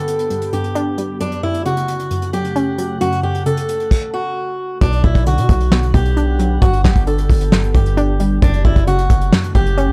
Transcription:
Already playing: synth pluck G2 D3, ambient pad D3 B3 G4, steel-string acoustic guitar A4
0.08 closed hi-hat
0.19 closed hi-hat
0.30 synth pluck G2, closed hi-hat
0.42 closed hi-hat
0.53 synth pluck G2, steel-string acoustic guitar G4, closed hi-hat
0.64 closed hi-hat
0.75 synth pluck D4, closed hi-hat
0.98 synth pluck G3, closed hi-hat
1.20 synth pluck F#2, ambient pad C#3 A3 F#5, steel-string acoustic guitar D4, closed hi-hat
1.32 closed hi-hat
1.43 synth pluck F#2, steel-string acoustic guitar E4
1.54 closed hi-hat
1.66 synth pluck C#3, steel-string acoustic guitar F#4, closed hi-hat
1.77 closed hi-hat
1.88 closed hi-hat
1.99 closed hi-hat
2.11 synth pluck F#2, closed hi-hat
2.22 closed hi-hat
2.33 synth pluck F#2, steel-string acoustic guitar G4, closed hi-hat
2.45 closed hi-hat
2.56 synth pluck C#4, closed hi-hat
2.78 synth pluck F#3, closed hi-hat
3.01 synth pluck F#2, steel-string acoustic guitar F#4, closed hi-hat
3.12 closed hi-hat
3.23 synth pluck F#2, steel-string acoustic guitar G4
3.35 closed hi-hat
3.46 synth pluck C#3, steel-string acoustic guitar A4, closed hi-hat
3.57 closed hi-hat
3.69 closed hi-hat
3.80 closed hi-hat
3.91 kick, crash
4.14 steel-string acoustic guitar F#4
4.81 808-style bass B1, synth pluck B2, ambient pad D3 B3 F#5, steel-string acoustic guitar D4, kick, closed hi-hat
4.93 closed hi-hat
5.04 808-style bass B1, synth pluck B2, steel-string acoustic guitar E4, kick
5.15 kick, closed hi-hat
5.26 synth pluck D3, steel-string acoustic guitar F#4, closed hi-hat
5.38 808-style bass B2, closed hi-hat
5.49 808-style bass B1, kick, closed hi-hat
5.60 closed hi-hat
5.72 synth pluck B2, snare
5.83 closed hi-hat
5.94 808-style bass B1, synth pluck B2, steel-string acoustic guitar G4, kick, closed hi-hat
6.05 closed hi-hat
6.17 synth pluck D4, closed hi-hat
6.39 synth pluck F#3, closed hi-hat
6.62 808-style bass G1, synth pluck G2, steel-string acoustic guitar F#4, ambient pad G4, kick, closed hi-hat
6.73 closed hi-hat
6.84 808-style bass G1, synth pluck G2, steel-string acoustic guitar G4, kick, snare
6.96 kick, closed hi-hat
7.07 synth pluck D3, steel-string acoustic guitar A4, closed hi-hat
7.18 closed hi-hat
7.30 808-style bass G1, kick, open hi-hat
7.41 closed hi-hat
7.52 synth pluck G2, snare
7.63 closed hi-hat
7.75 808-style bass G1, synth pluck G2, steel-string acoustic guitar G4, kick, closed hi-hat
7.86 closed hi-hat
7.97 synth pluck D4, closed hi-hat
8.20 synth pluck G3, closed hi-hat
8.42 808-style bass F#1, synth pluck F#2, ambient pad C#3 A3 F#5, steel-string acoustic guitar D4, kick, closed hi-hat
8.54 closed hi-hat
8.65 808-style bass F#1, synth pluck F#2, steel-string acoustic guitar E4, kick
8.76 kick, closed hi-hat
8.87 synth pluck C#3, steel-string acoustic guitar F#4, closed hi-hat
8.99 closed hi-hat
9.10 808-style bass F#1, kick, closed hi-hat
9.21 closed hi-hat
9.32 synth pluck F#2, snare
9.44 closed hi-hat
9.55 808-style bass F#1, synth pluck F#2, steel-string acoustic guitar G4, kick, closed hi-hat
9.66 closed hi-hat
9.77 synth pluck C#4, closed hi-hat
9.89 808-style bass A2

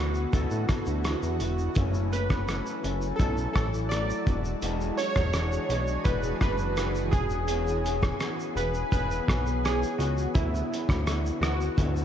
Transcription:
Already playing: analog synth bass D2, ambient pad D3 B3 E4 F#4, clean electric guitar F#4, synth keys F#4
0.00 clean electric guitar B3 E4
0.15 shaker
0.33 analog synth bass D2, clean electric guitar D3 B3 E4 F#4, synth keys A4, kick, closed hi-hat, shaker
0.51 analog synth bass A2, shaker
0.67 clean electric guitar E4 F#4, kick, cross-stick, closed hi-hat, shaker
0.72 clean electric guitar B3
0.86 analog synth bass D2, shaker
1.05 clean electric guitar D3 B3 E4 F#4, cross-stick, closed hi-hat, shaker
1.23 analog synth bass E2, shaker
1.40 analog synth bass E1, clean electric guitar B3 E4 F#4, closed hi-hat, shaker
1.59 shaker
1.75 analog synth bass F#1, clean electric guitar F#2 E3 A3 C#4, ambient pad F#3 E4 A4, kick, closed hi-hat, shaker
1.94 shaker
2.11 clean electric guitar E3 A3 C#4, synth keys B4, closed hi-hat, shaker
2.30 kick, cross-stick, shaker
2.48 clean electric guitar F#2 E3 A3 C#4, cross-stick, closed hi-hat, shaker
2.66 shaker
2.84 analog synth bass F#1, clean electric guitar E3 A3 C#4, closed hi-hat, shaker
3.02 shaker
3.16 analog synth bass B1, clean electric guitar F#2 E3, synth keys A4, kick, closed hi-hat, shaker
3.21 clean electric guitar A3 C#4
3.37 shaker
3.53 analog synth bass A1, clean electric guitar A3 C#4, synth keys A4, kick, cross-stick, closed hi-hat, shaker
3.59 clean electric guitar E3
3.74 shaker
3.89 clean electric guitar F#2 E3 A3, synth keys D5, cross-stick, closed hi-hat, shaker
4.10 shaker
4.25 analog synth bass E1, ambient pad E3 D4 F#4 G#4, clean electric guitar G#3 D4 F#4, kick, closed hi-hat, shaker
4.45 shaker
4.62 analog synth bass E1, clean electric guitar E3 G#3 D4 F#4, closed hi-hat, shaker
4.81 shaker
4.97 clean electric guitar G#3 D4 F#4, synth keys C#5, closed hi-hat, shaker
5.15 analog synth bass E1, kick, cross-stick, shaker
5.33 clean electric guitar E3 G#3 D4 F#4, cross-stick, closed hi-hat, shaker
5.52 shaker
5.69 analog synth bass B1, clean electric guitar G#3 D4 F#4, closed hi-hat, shaker
5.87 shaker
6.04 analog synth bass E1, clean electric guitar E3 G#3 D4 F#4, synth keys B4, kick, closed hi-hat, shaker
6.23 shaker
6.40 analog synth bass F#1, clean electric guitar G#3 D4 F#4, synth keys B4, kick, cross-stick, closed hi-hat, shaker
6.58 shaker
6.76 clean electric guitar E3 G#3 D4 F#4, synth keys B4, cross-stick, closed hi-hat, shaker
6.95 shaker
7.11 analog synth bass E1, ambient pad B3 G#4, clean electric guitar C#4 G#4, synth keys G#4, kick, closed hi-hat, shaker
7.15 clean electric guitar B3
7.30 shaker
7.48 clean electric guitar E3 B3 C#4 G#4, synth keys G#4, closed hi-hat, shaker
7.67 shaker
7.84 clean electric guitar B3 C#4 G#4, closed hi-hat, shaker
8.03 kick, cross-stick, shaker
8.20 clean electric guitar E3 B3 C#4 G#4, cross-stick, closed hi-hat, shaker
8.40 shaker
8.55 analog synth bass E1, clean electric guitar B3 C#4 G#4, synth keys B4, closed hi-hat, shaker
8.74 shaker
8.90 analog synth bass E1, clean electric guitar E3 B3 C#4 G#4, synth keys B4, kick, closed hi-hat, shaker
9.11 shaker
9.27 analog synth bass B1, clean electric guitar B3 C#4 G#4, kick, cross-stick, closed hi-hat, shaker
9.47 shaker
9.64 clean electric guitar E3 B3 C#4 G#4, synth keys G#4, cross-stick, closed hi-hat, shaker
9.83 shaker
9.98 analog synth bass C#2, clean electric guitar B3 C#4 G#4, synth keys F#4, closed hi-hat, shaker
10.18 shaker
10.34 analog synth bass D2, clean electric guitar D3 F#3 B3 E4, ambient pad D3 E4 F#4, synth keys E4, kick, closed hi-hat, shaker
10.55 shaker
10.70 clean electric guitar F#3 B3 E4, closed hi-hat, shaker
10.89 analog synth bass D2, kick, cross-stick, shaker
11.06 clean electric guitar D3 F#3 B3 E4, cross-stick, closed hi-hat, shaker
11.26 shaker
11.41 analog synth bass D2, clean electric guitar B3 E4, synth keys F#4, cross-stick, closed hi-hat, shaker
11.45 clean electric guitar F#3
11.61 shaker
11.77 analog synth bass D2, clean electric guitar D3 F#3 B3 E4, kick, closed hi-hat, shaker
11.96 shaker

